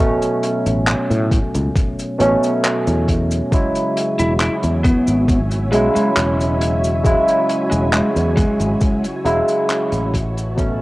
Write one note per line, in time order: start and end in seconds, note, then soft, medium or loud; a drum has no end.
0.00 2.18 B2 medium
0.00 2.19 F#3 medium
0.00 2.20 A3 medium
0.00 2.21 C#4 loud
0.22 closed hi-hat medium
0.22 cabasa soft
0.43 closed hi-hat medium
0.66 0.94 A1 loud
0.66 closed hi-hat medium
0.66 cabasa medium
0.87 clap loud
0.87 closed hi-hat medium
0.87 cabasa medium
1.10 1.38 A2 loud
1.10 closed hi-hat medium
1.10 cabasa soft
1.31 kick loud
1.31 closed hi-hat loud
1.54 1.68 C#2 medium
1.54 closed hi-hat medium
1.54 cabasa medium
1.75 kick loud
1.75 closed hi-hat medium
1.75 cabasa medium
1.99 closed hi-hat soft
1.99 cabasa soft
2.18 2.35 A1 medium
2.18 3.46 B2 medium
2.18 3.47 F#3 medium
2.18 3.47 A3 medium
2.18 3.48 C#4 loud
2.18 closed hi-hat medium
2.43 closed hi-hat medium
2.43 cabasa medium
2.64 clap loud
2.64 closed hi-hat medium
2.64 cabasa medium
2.87 3.40 E2 medium
2.87 closed hi-hat medium
2.87 cabasa soft
3.08 kick medium
3.08 closed hi-hat medium
3.31 closed hi-hat medium
3.31 cabasa medium
3.51 5.67 C#3 medium
3.51 5.68 F#3 medium
3.51 5.68 G#3 medium
3.51 5.68 E4 medium
3.51 10.82 F#4 medium
3.51 10.82 C#5 medium
3.51 10.10 E5 medium
3.51 10.10 G#5 medium
3.51 kick loud
3.51 closed hi-hat medium
3.51 cabasa medium
3.75 closed hi-hat medium
3.75 cabasa soft
3.97 closed hi-hat medium
4.19 4.47 E1 loud
4.19 4.33 E4 medium
4.19 closed hi-hat medium
4.19 cabasa medium
4.40 4.55 E4 medium
4.40 clap loud
4.40 closed hi-hat medium
4.40 cabasa medium
4.63 4.91 E2 loud
4.63 closed hi-hat medium
4.63 cabasa soft
4.84 5.38 B3 medium
4.84 kick loud
4.84 closed hi-hat loud
5.07 5.73 G#1 medium
5.07 closed hi-hat medium
5.07 cabasa medium
5.28 kick loud
5.28 closed hi-hat medium
5.28 cabasa medium
5.51 closed hi-hat medium
5.51 cabasa soft
5.72 5.87 B1 medium
5.72 6.99 C#3 medium
5.72 7.00 F#3 medium
5.72 5.87 G#3 medium
5.72 7.00 G#3 medium
5.72 7.01 E4 loud
5.72 closed hi-hat medium
5.95 6.09 G#3 medium
5.95 muted fretless electric bass stroke soft
5.95 closed hi-hat medium
5.95 cabasa medium
6.17 7.15 E1 medium
6.17 clap loud
6.17 closed hi-hat medium
6.17 cabasa medium
6.41 closed hi-hat medium
6.41 cabasa soft
6.61 closed hi-hat loud
6.84 closed hi-hat medium
6.84 cabasa medium
7.03 9.20 C#3 medium
7.03 9.20 F#3 medium
7.03 9.21 G#3 medium
7.03 9.21 E4 medium
7.03 kick loud
7.03 closed hi-hat medium
7.03 cabasa medium
7.28 closed hi-hat medium
7.28 cabasa soft
7.49 closed hi-hat medium
7.71 8.00 E1 loud
7.71 7.85 G#3 medium
7.71 closed hi-hat medium
7.71 cabasa medium
7.93 8.08 G#3 medium
7.93 clap loud
7.93 closed hi-hat medium
7.93 cabasa medium
8.16 8.44 E2 loud
8.16 closed hi-hat soft
8.16 cabasa soft
8.37 9.04 G#3 loud
8.37 kick loud
8.37 closed hi-hat medium
8.60 8.74 G#1 medium
8.60 closed hi-hat medium
8.60 cabasa medium
8.81 kick loud
8.81 closed hi-hat medium
8.81 cabasa medium
9.04 closed hi-hat medium
9.04 cabasa soft
9.24 9.40 E1 medium
9.24 10.11 C#3 medium
9.24 10.11 F#3 medium
9.24 10.11 G#3 medium
9.24 10.11 E4 loud
9.24 closed hi-hat medium
9.48 closed hi-hat medium
9.48 cabasa medium
9.69 clap loud
9.69 closed hi-hat medium
9.69 cabasa medium
9.92 10.82 A1 medium
9.92 closed hi-hat medium
9.92 cabasa soft
10.13 10.82 B4 medium
10.13 10.82 A5 medium
10.13 kick medium
10.13 closed hi-hat loud
10.37 closed hi-hat medium
10.37 cabasa medium
10.56 10.82 B2 medium
10.56 10.82 F#3 medium
10.56 10.82 A3 medium
10.56 10.82 C#4 medium
10.56 kick loud
10.56 closed hi-hat medium
10.56 cabasa medium